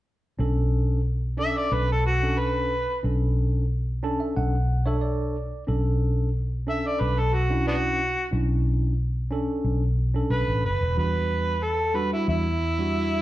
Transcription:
0.39 1.54 B1 loud
0.39 1.00 C#4 medium
0.39 1.00 D4 medium
0.39 1.00 A4 medium
1.37 1.89 C#4 medium
1.37 1.90 D4 medium
1.37 1.90 A4 medium
1.37 1.59 E5 medium
1.58 1.75 D5 medium
1.72 2.86 B1 medium
1.72 1.89 B4 medium
1.92 2.05 A4 medium
2.06 2.41 F#4 medium
2.23 2.72 C#4 medium
2.23 2.72 D4 medium
2.23 2.72 A4 medium
2.39 3.02 B4 medium
3.03 4.19 B1 medium
3.03 3.64 C#4 medium
3.03 3.64 D4 medium
3.03 3.65 A4 medium
4.03 4.54 C#4 medium
4.03 4.54 D4 medium
4.03 4.55 A4 medium
4.03 4.20 A5 medium
4.20 4.34 E5 medium
4.37 5.51 B1 medium
4.37 4.83 F#5 medium
4.86 5.35 D4 medium
4.86 5.36 A4 medium
4.86 5.35 C#5 medium
4.86 5.01 E5 medium
5.01 5.64 D5 medium
5.67 6.83 B1 medium
5.67 6.28 C#4 medium
5.67 6.28 D4 medium
5.67 6.29 A4 medium
6.67 7.18 C#4 medium
6.67 7.18 D4 medium
6.67 7.19 A4 medium
6.67 6.88 E5 medium
6.87 7.03 D5 medium
7.01 8.15 B1 medium
7.01 7.21 B4 medium
7.20 7.36 A4 medium
7.34 7.66 F#4 medium
7.50 7.99 C#4 medium
7.50 8.00 D4 medium
7.50 8.00 E4 medium
7.68 7.76 B3 medium
7.68 7.74 D4 medium
7.68 8.31 F#4 medium
8.31 9.47 B1 loud
8.31 8.92 C#4 medium
8.31 8.93 D4 medium
8.31 8.93 E4 medium
9.31 9.82 C#4 medium
9.31 9.83 D4 medium
9.31 9.83 A4 medium
9.64 10.22 B1 medium
10.14 10.63 C#4 medium
10.14 10.64 D4 medium
10.14 10.64 A4 medium
10.30 10.46 B1 medium
10.30 10.63 B4 medium
10.48 10.62 A1 medium
10.64 10.79 F#1 medium
10.64 10.96 B4 medium
10.81 10.95 E1 medium
10.96 12.11 E2 medium
10.96 11.56 G3 medium
10.96 11.57 D4 medium
10.96 11.57 F#4 medium
10.96 11.65 B4 loud
11.63 11.97 A4 medium
11.94 12.46 G3 medium
11.94 12.46 D4 medium
11.94 12.46 F#4 medium
11.94 12.12 B4 medium
12.13 12.27 E4 medium
12.28 13.22 E2 medium
12.28 13.22 E4 medium
12.79 13.22 G3 medium
12.79 13.22 D4 medium
12.79 13.22 F#4 medium

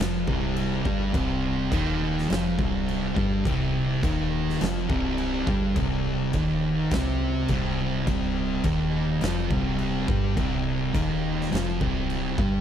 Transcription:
0.00 0.26 F1 medium
0.00 0.27 F2 loud
0.00 0.27 F3 loud
0.00 snare loud
0.28 0.81 C1 loud
0.28 0.84 C2 medium
0.28 0.85 C3 loud
0.28 kick loud
0.56 crash medium
0.85 1.12 G1 loud
0.85 1.13 G2 loud
0.85 1.13 G3 loud
0.85 kick loud
1.13 1.68 C1 loud
1.13 1.71 C2 medium
1.13 1.71 C3 loud
1.13 kick loud
1.13 crash medium
1.72 2.26 D#1 medium
1.72 2.28 D#2 medium
1.72 2.29 D#3 loud
1.72 kick loud
1.72 crash medium
2.18 snare soft
2.28 2.57 F1 medium
2.28 2.57 F2 loud
2.28 2.58 F3 loud
2.28 crash medium
2.33 snare loud
2.58 3.13 C1 loud
2.58 3.15 C2 medium
2.58 3.16 C3 loud
2.58 kick loud
2.88 crash medium
3.15 3.43 G1 loud
3.15 3.44 G2 loud
3.15 3.45 G3 loud
3.15 kick loud
3.45 3.99 C1 loud
3.45 4.02 C2 medium
3.45 4.03 C3 loud
3.45 kick loud
3.45 crash medium
4.03 4.57 D#1 loud
4.03 4.60 D#2 medium
4.03 4.60 D#3 loud
4.03 kick loud
4.03 crash medium
4.49 snare soft
4.60 4.88 F1 loud
4.60 4.89 F2 loud
4.60 4.89 F3 medium
4.60 snare loud
4.60 crash medium
4.89 5.44 C1 loud
4.89 5.46 C2 loud
4.89 5.46 C3 loud
4.89 kick loud
5.18 crash medium
5.47 5.74 G1 loud
5.47 5.75 G2 loud
5.47 5.75 G3 loud
5.47 kick loud
5.76 6.30 C1 loud
5.76 6.33 C2 loud
5.76 6.33 C3 loud
5.76 kick loud
5.76 crash medium
6.33 6.88 D#1 medium
6.33 6.90 D#2 loud
6.33 6.91 D#3 loud
6.33 kick loud
6.33 crash medium
6.91 7.45 C2 loud
6.91 7.49 C3 loud
6.91 7.49 C4 loud
6.91 kick loud
6.91 snare loud
6.91 crash medium
7.48 8.03 C1 loud
7.48 8.06 C2 loud
7.48 8.06 C3 loud
7.48 kick loud
7.48 crash medium
8.07 8.61 C1 loud
8.07 8.64 C2 medium
8.07 8.64 C3 loud
8.07 kick loud
8.07 crash medium
8.64 9.18 D#1 medium
8.64 9.21 D#2 loud
8.64 9.22 D#3 medium
8.64 kick loud
8.64 crash medium
9.21 9.49 F1 loud
9.21 9.50 F2 medium
9.21 9.50 F3 loud
9.21 snare loud
9.21 crash medium
9.51 10.04 C1 loud
9.51 10.07 C2 medium
9.51 10.07 C3 medium
9.51 kick loud
9.79 crash medium
10.08 10.35 G1 medium
10.08 10.36 G2 loud
10.08 10.36 G3 loud
10.08 kick loud
10.37 10.91 C1 loud
10.37 10.93 C2 medium
10.37 10.94 C3 loud
10.37 kick loud
10.37 crash medium
10.94 11.48 D#1 medium
10.94 11.51 D#2 loud
10.94 11.51 D#3 loud
10.94 kick loud
10.94 crash medium
11.41 snare soft
11.52 11.79 F1 loud
11.52 11.80 F2 medium
11.52 11.80 F3 loud
11.52 snare loud
11.52 crash medium
11.80 12.35 C1 loud
11.80 12.37 C2 medium
11.80 12.38 C3 loud
11.80 kick loud
12.10 crash medium
12.38 12.61 G1 loud
12.38 12.61 G2 loud
12.38 12.61 G3 loud
12.38 kick loud

